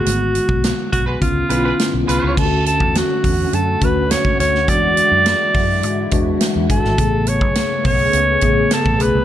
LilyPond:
<<
  \new Staff \with { instrumentName = "Alto saxophone" } { \time 4/4 \key d \lydian \tempo 4 = 104 fis'4. fis'8 eis'4. eis'8 | a'8 a'8 fis'4 a'8 b'8 cis''8 cis''8 | d''2. r8 a'8~ | a'8 cis''4 cis''4. a'8 b'8 | }
  \new Staff \with { instrumentName = "Horn section" } { \time 4/4 \key d \lydian r4. r16 <gis fis' b'>16 r8 <gis eis' b'>16 <gis eis' b'>16 r8 <gis eis' b'>8 | r1 | r1 | r1 | }
  \new Staff \with { instrumentName = "Tine electric piano" } { \time 4/4 \key d \lydian <d gis a b fis'>4. r8 <d b cis' eis'>8 <d b cis' e' eis'>4. | <d a cis' eis' fis'>4. r4 <d a cis' fis'>4. | <e gis d' fis'>4. r4 <e gis d' fis'>4. | <cis a b gis'>4. r4 <cis a b gis'>4. | }
  \new Staff \with { instrumentName = "String machine" } { \time 4/4 \key d \lydian << { r1 | <d fis'>1~ | <d fis'>1 | <cis gis'>1 | } \\ { r1 | <a cis'>1 | <gis e'>1 | <a b>1 | } >> }
  \new Staff \with { instrumentName = "Fingered electric bass" } { \clef bass \time 4/4 \key d \lydian gis,,8. b,,8 r16 b,,8 cis,8 b,,8 r16 b,,16 bis,,16 cis,16 | d,8. e,8 r16 e,8 fis,8 d,8. r16 d,8 | e,8. fis,8 r16 fis,8 gis,8 e,8 r16 e,16 g,,16 gis,,16 | a,,8. b,,8 r16 b,,8 cis,8 a,,8 r16 a,,16 b,,16 bis,,16 | }
  \new DrumStaff \with { instrumentName = "Drums" } \drummode { \time 4/4 hh8 hh16 bd16 <hh sn>8 <hh bd>8 <hh bd>8 hh8 <hh sn>8 hh8 | <cymc bd>8 hh16 bd16 <hh sn>8 <hho bd>8 hh8 <hh bd>8 <hh sn>16 bd16 <hh sn>16 sn16 | <hh bd>8 hh8 <hh sn>8 <hho bd>8 hh8 <hh bd>8 <hh sn>8 <hh bd>16 sn16 | <hh bd>8 hh16 bd16 <hh sn>8 <hho bd>8 hh8 <hh bd>8 <hh sn>16 bd16 hh8 | }
>>